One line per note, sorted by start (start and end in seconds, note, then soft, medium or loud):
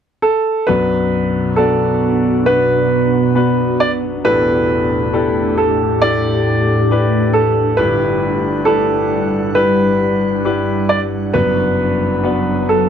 0.22 0.69 A4 medium
0.67 4.21 B1 soft
0.67 4.21 F#2 soft
0.67 4.22 B2 medium
0.67 1.53 B3 medium
0.67 4.22 B3 medium
0.67 1.53 D4 soft
0.67 4.22 D4 medium
0.67 1.53 F#4 soft
0.67 4.22 F#4 medium
0.67 1.53 B4 medium
1.56 2.42 B3 soft
1.56 2.42 D4 soft
1.56 2.42 F#4 soft
1.56 2.42 A4 medium
1.56 2.42 D5 medium
2.46 3.31 B3 medium
2.46 3.31 D4 soft
2.46 3.31 F#4 soft
2.46 3.76 B4 medium
2.46 3.32 B4 medium
3.35 4.20 B3 medium
3.35 4.21 D4 soft
3.35 4.21 F#4 soft
3.35 4.21 B4 medium
3.80 3.90 D5 medium
4.24 7.74 A1 soft
4.24 7.74 E2 soft
4.24 7.76 A2 medium
4.24 7.76 A3 medium
4.24 5.09 D4 medium
4.24 12.89 D4 medium
4.24 5.09 E4 medium
4.24 5.09 G4 medium
4.24 7.76 G4 medium
4.24 5.09 A4 medium
4.24 5.62 B4 medium
5.13 5.98 D4 medium
5.13 5.98 E4 soft
5.13 5.98 G4 soft
5.13 5.98 A4 medium
5.58 5.99 A4 medium
6.01 6.86 D4 medium
6.01 6.86 E4 soft
6.01 6.86 G4 soft
6.01 6.86 A4 medium
6.01 7.38 D5 medium
6.91 7.74 D4 medium
6.91 7.74 E4 soft
6.91 7.74 G4 medium
6.91 7.75 B4 medium
7.33 7.79 A4 medium
7.77 11.31 G1 medium
7.77 11.31 G2 medium
7.77 11.31 G3 medium
7.77 8.62 D4 medium
7.77 8.62 E4 medium
7.77 8.62 G4 medium
7.77 8.69 B4 medium
7.77 8.63 B4 medium
7.77 11.31 F#5 medium
8.65 9.51 D4 medium
8.65 9.51 E4 soft
8.65 9.51 G4 soft
8.65 9.58 A4 medium
8.65 9.52 B4 medium
9.55 10.40 D4 medium
9.55 10.40 E4 soft
9.55 10.41 G4 medium
9.55 10.93 B4 medium
9.55 10.41 B4 medium
10.45 11.30 D4 medium
10.45 11.30 E4 medium
10.45 11.30 G4 soft
10.45 11.30 B4 medium
10.89 10.99 D5 medium
11.33 12.89 F#1 soft
11.33 12.89 F#2 soft
11.33 12.89 F#2 medium
11.33 12.89 F#3 medium
11.33 12.19 B3 medium
11.33 12.19 D4 medium
11.33 12.19 F#4 medium
11.33 12.65 B4 medium
11.33 12.20 B4 medium
11.33 12.89 B4 medium
12.24 12.89 B3 medium
12.24 12.89 D4 soft
12.24 12.89 F#4 soft
12.24 12.89 B4 medium
12.69 12.89 A4 medium